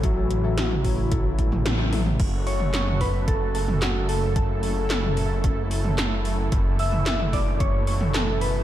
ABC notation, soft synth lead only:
X:1
M:4/4
L:1/8
Q:1/4=111
K:F#m
V:1 name="Soft synth lead"
F6- F z | z c c B A A F A | A6- A z | z e e d c c A B |]